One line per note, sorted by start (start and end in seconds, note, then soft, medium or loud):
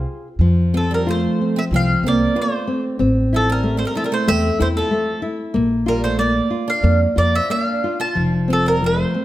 0.00 0.27 F4 soft
0.00 0.27 G#4 soft
0.00 0.27 C5 soft
0.39 1.25 F2 medium
0.39 1.71 F3 medium
0.74 0.89 F3 medium
0.74 1.06 C4 soft
0.74 0.92 A4 medium
0.91 1.06 G3 medium
0.91 1.09 A#4 medium
1.07 1.54 A3 medium
1.07 1.39 F4 medium
1.07 1.59 C5 medium
1.41 1.72 C4 soft
1.56 1.61 C4 medium
1.56 1.64 E5 medium
1.71 1.92 C2 medium
1.71 2.04 F3 medium
1.71 2.03 C4 medium
1.76 2.07 F5 medium
2.03 2.24 C2 medium
2.03 2.35 A#3 medium
2.03 2.35 C4 medium
2.08 2.39 D5 medium
2.35 2.81 A3 medium
2.35 2.67 F4 medium
2.42 2.83 C5 medium
2.67 2.98 C4 medium
2.99 3.83 A1 medium
2.99 5.50 C4 medium
3.33 3.48 F3 medium
3.33 3.63 E4 medium
3.33 3.49 A4 medium
3.50 3.76 G3 medium
3.50 3.78 A#4 medium
3.63 3.95 A3 medium
3.77 3.85 A3 medium
3.77 3.87 C5 medium
3.85 3.94 G3 medium
3.85 3.95 A#4 medium
3.95 4.03 F3 medium
3.95 4.27 E4 medium
3.95 4.04 A4 medium
4.04 4.11 G3 medium
4.04 4.13 A#4 medium
4.12 4.27 A3 medium
4.12 4.29 C5 medium
4.27 4.49 E2 loud
4.27 4.58 A3 medium
4.27 4.58 C4 medium
4.27 4.58 E5 loud
4.59 4.81 E2 medium
4.59 4.65 A3 medium
4.59 4.90 E4 medium
4.59 4.67 C5 medium
4.77 5.21 F3 medium
4.77 5.20 A4 medium
4.91 5.22 A3 medium
5.22 5.53 E4 medium
5.54 6.39 A#1 loud
5.54 6.17 A#3 medium
5.86 6.02 G3 medium
5.86 6.17 F4 medium
5.86 6.03 A#4 medium
6.04 6.19 A3 medium
6.04 6.18 C5 medium
6.19 6.50 A#3 medium
6.19 6.65 A#3 medium
6.19 6.69 D5 medium
6.50 6.82 F4 soft
6.68 6.98 D4 medium
6.68 6.99 F5 medium
6.83 7.05 F2 loud
6.83 7.15 A#3 medium
7.16 7.39 F2 medium
7.16 7.33 A#3 medium
7.16 7.48 F4 soft
7.16 7.34 D5 medium
7.35 7.50 C4 medium
7.35 7.51 E5 medium
7.50 7.82 A#3 medium
7.50 7.96 D4 medium
7.50 7.62 E5 medium
7.62 8.00 F5 medium
7.84 8.15 F4 soft
8.00 8.30 F4 medium
8.00 8.31 A5 medium
8.15 9.03 F1 medium
8.15 8.81 F3 medium
8.48 8.65 F3 medium
8.48 8.81 C4 medium
8.53 8.68 A4 medium
8.66 8.81 G3 medium
8.66 8.84 A#4 medium
8.82 9.15 F3 soft
8.82 9.25 A3 medium
8.86 9.25 C5 medium
9.14 9.25 C4 soft